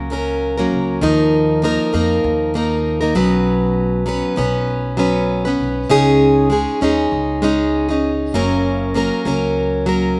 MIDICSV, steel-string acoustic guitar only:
0, 0, Header, 1, 2, 480
1, 0, Start_track
1, 0, Key_signature, 6, "major"
1, 0, Tempo, 609756
1, 808, Time_signature, 4, 2, 24, 8
1, 8028, End_track
2, 0, Start_track
2, 0, Title_t, "Steel-string acoustic guitar"
2, 0, Program_c, 0, 25
2, 0, Note_on_c, 0, 58, 63
2, 0, Note_on_c, 0, 61, 64
2, 0, Note_on_c, 0, 70, 73
2, 79, Note_on_c, 0, 54, 60
2, 87, Note_off_c, 0, 58, 0
2, 87, Note_off_c, 0, 61, 0
2, 90, Note_on_c, 0, 58, 56
2, 97, Note_on_c, 0, 61, 68
2, 101, Note_off_c, 0, 70, 0
2, 104, Note_on_c, 0, 70, 73
2, 444, Note_off_c, 0, 70, 0
2, 452, Note_off_c, 0, 61, 0
2, 453, Note_on_c, 0, 70, 52
2, 456, Note_off_c, 0, 54, 0
2, 457, Note_off_c, 0, 58, 0
2, 461, Note_on_c, 0, 61, 56
2, 466, Note_on_c, 0, 58, 55
2, 472, Note_on_c, 0, 54, 43
2, 798, Note_off_c, 0, 54, 0
2, 798, Note_off_c, 0, 58, 0
2, 798, Note_on_c, 0, 51, 85
2, 801, Note_on_c, 0, 53, 75
2, 802, Note_off_c, 0, 70, 0
2, 807, Note_on_c, 0, 58, 77
2, 808, Note_off_c, 0, 61, 0
2, 811, Note_on_c, 0, 63, 76
2, 811, Note_on_c, 0, 70, 93
2, 1267, Note_off_c, 0, 53, 0
2, 1276, Note_on_c, 0, 53, 71
2, 1278, Note_off_c, 0, 58, 0
2, 1283, Note_off_c, 0, 51, 0
2, 1284, Note_off_c, 0, 63, 0
2, 1287, Note_on_c, 0, 58, 63
2, 1290, Note_off_c, 0, 70, 0
2, 1293, Note_on_c, 0, 63, 80
2, 1298, Note_on_c, 0, 70, 80
2, 1507, Note_off_c, 0, 53, 0
2, 1516, Note_off_c, 0, 58, 0
2, 1517, Note_on_c, 0, 53, 66
2, 1521, Note_off_c, 0, 63, 0
2, 1525, Note_on_c, 0, 58, 71
2, 1527, Note_off_c, 0, 70, 0
2, 1530, Note_on_c, 0, 63, 69
2, 1537, Note_on_c, 0, 70, 73
2, 1989, Note_off_c, 0, 53, 0
2, 1999, Note_on_c, 0, 53, 60
2, 2000, Note_off_c, 0, 58, 0
2, 2006, Note_off_c, 0, 63, 0
2, 2009, Note_on_c, 0, 58, 64
2, 2011, Note_off_c, 0, 70, 0
2, 2015, Note_on_c, 0, 63, 74
2, 2020, Note_on_c, 0, 70, 76
2, 2357, Note_off_c, 0, 70, 0
2, 2367, Note_on_c, 0, 70, 57
2, 2368, Note_off_c, 0, 63, 0
2, 2376, Note_off_c, 0, 53, 0
2, 2377, Note_on_c, 0, 63, 55
2, 2381, Note_off_c, 0, 58, 0
2, 2389, Note_on_c, 0, 58, 47
2, 2480, Note_on_c, 0, 47, 81
2, 2481, Note_off_c, 0, 58, 0
2, 2482, Note_off_c, 0, 70, 0
2, 2484, Note_on_c, 0, 54, 85
2, 2484, Note_on_c, 0, 59, 73
2, 2485, Note_off_c, 0, 63, 0
2, 2488, Note_on_c, 0, 61, 78
2, 2494, Note_on_c, 0, 71, 80
2, 3185, Note_off_c, 0, 54, 0
2, 3192, Note_off_c, 0, 59, 0
2, 3194, Note_on_c, 0, 54, 66
2, 3201, Note_on_c, 0, 59, 66
2, 3204, Note_off_c, 0, 47, 0
2, 3207, Note_off_c, 0, 61, 0
2, 3207, Note_off_c, 0, 71, 0
2, 3210, Note_on_c, 0, 61, 65
2, 3216, Note_on_c, 0, 71, 82
2, 3423, Note_off_c, 0, 54, 0
2, 3433, Note_off_c, 0, 59, 0
2, 3433, Note_on_c, 0, 54, 65
2, 3439, Note_off_c, 0, 61, 0
2, 3442, Note_on_c, 0, 59, 69
2, 3443, Note_off_c, 0, 71, 0
2, 3448, Note_on_c, 0, 61, 68
2, 3452, Note_on_c, 0, 71, 69
2, 3903, Note_off_c, 0, 54, 0
2, 3911, Note_off_c, 0, 59, 0
2, 3913, Note_on_c, 0, 54, 66
2, 3920, Note_on_c, 0, 59, 56
2, 3924, Note_off_c, 0, 71, 0
2, 3925, Note_off_c, 0, 61, 0
2, 3928, Note_on_c, 0, 61, 73
2, 3933, Note_on_c, 0, 71, 66
2, 4281, Note_off_c, 0, 71, 0
2, 4290, Note_on_c, 0, 71, 53
2, 4293, Note_off_c, 0, 54, 0
2, 4293, Note_off_c, 0, 61, 0
2, 4296, Note_off_c, 0, 59, 0
2, 4303, Note_on_c, 0, 61, 56
2, 4312, Note_on_c, 0, 59, 45
2, 4636, Note_off_c, 0, 61, 0
2, 4640, Note_on_c, 0, 49, 85
2, 4642, Note_off_c, 0, 59, 0
2, 4643, Note_off_c, 0, 71, 0
2, 4643, Note_on_c, 0, 56, 83
2, 4646, Note_on_c, 0, 61, 78
2, 4649, Note_on_c, 0, 63, 84
2, 4653, Note_on_c, 0, 68, 102
2, 5105, Note_off_c, 0, 56, 0
2, 5115, Note_on_c, 0, 56, 61
2, 5120, Note_off_c, 0, 63, 0
2, 5123, Note_off_c, 0, 61, 0
2, 5124, Note_off_c, 0, 49, 0
2, 5126, Note_off_c, 0, 68, 0
2, 5126, Note_on_c, 0, 61, 66
2, 5130, Note_on_c, 0, 63, 75
2, 5136, Note_on_c, 0, 68, 68
2, 5352, Note_off_c, 0, 56, 0
2, 5360, Note_off_c, 0, 61, 0
2, 5362, Note_on_c, 0, 56, 56
2, 5367, Note_off_c, 0, 63, 0
2, 5369, Note_on_c, 0, 61, 72
2, 5372, Note_off_c, 0, 68, 0
2, 5377, Note_on_c, 0, 63, 61
2, 5384, Note_on_c, 0, 68, 63
2, 5831, Note_off_c, 0, 56, 0
2, 5841, Note_on_c, 0, 56, 65
2, 5846, Note_off_c, 0, 61, 0
2, 5847, Note_off_c, 0, 63, 0
2, 5849, Note_on_c, 0, 61, 69
2, 5853, Note_off_c, 0, 68, 0
2, 5856, Note_on_c, 0, 63, 71
2, 5862, Note_on_c, 0, 68, 75
2, 6198, Note_off_c, 0, 68, 0
2, 6208, Note_on_c, 0, 68, 52
2, 6213, Note_off_c, 0, 63, 0
2, 6217, Note_off_c, 0, 56, 0
2, 6220, Note_off_c, 0, 61, 0
2, 6223, Note_on_c, 0, 63, 53
2, 6232, Note_on_c, 0, 61, 42
2, 6562, Note_off_c, 0, 68, 0
2, 6565, Note_on_c, 0, 42, 71
2, 6566, Note_off_c, 0, 61, 0
2, 6567, Note_on_c, 0, 49, 87
2, 6568, Note_on_c, 0, 54, 85
2, 6569, Note_off_c, 0, 63, 0
2, 6574, Note_on_c, 0, 58, 79
2, 6575, Note_on_c, 0, 61, 76
2, 6577, Note_on_c, 0, 70, 83
2, 7031, Note_off_c, 0, 54, 0
2, 7040, Note_on_c, 0, 54, 60
2, 7045, Note_off_c, 0, 58, 0
2, 7046, Note_off_c, 0, 42, 0
2, 7046, Note_off_c, 0, 61, 0
2, 7048, Note_off_c, 0, 49, 0
2, 7048, Note_on_c, 0, 58, 64
2, 7055, Note_on_c, 0, 61, 68
2, 7060, Note_off_c, 0, 70, 0
2, 7063, Note_on_c, 0, 70, 77
2, 7274, Note_off_c, 0, 54, 0
2, 7283, Note_off_c, 0, 58, 0
2, 7284, Note_on_c, 0, 54, 60
2, 7292, Note_off_c, 0, 61, 0
2, 7292, Note_on_c, 0, 58, 67
2, 7296, Note_off_c, 0, 70, 0
2, 7300, Note_on_c, 0, 61, 70
2, 7306, Note_on_c, 0, 70, 69
2, 7754, Note_off_c, 0, 54, 0
2, 7763, Note_on_c, 0, 54, 69
2, 7767, Note_off_c, 0, 58, 0
2, 7769, Note_off_c, 0, 61, 0
2, 7770, Note_on_c, 0, 58, 61
2, 7778, Note_on_c, 0, 61, 67
2, 7780, Note_off_c, 0, 70, 0
2, 7783, Note_on_c, 0, 70, 67
2, 8028, Note_off_c, 0, 54, 0
2, 8028, Note_off_c, 0, 58, 0
2, 8028, Note_off_c, 0, 61, 0
2, 8028, Note_off_c, 0, 70, 0
2, 8028, End_track
0, 0, End_of_file